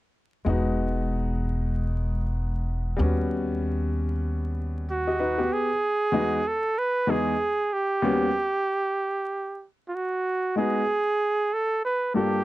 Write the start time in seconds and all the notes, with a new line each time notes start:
0.45 E1 G#3 B3 D#4
0.49 F#4
2.97 D#2 G3 B3 C#4
3.02 F#4
4.91 F#4
5.07 G4 D#5
5.20 D#4 B4
5.38 B3 G4
5.53 G#4
6.12 E2 G#3 B3 D#4 F#4
6.48 A4
6.79 B4
7.07 E2 G#3 B3 D#4 G#4
7.73 G4
8.02 D#2 G3 B3 C#4 F#4
9.89 F4
9.95 F#4
10.56 G#3 B3 D#4 F#4 G#4
11.54 A4
11.85 B4
12.14 G2 A#3 D4 F4 G4 A4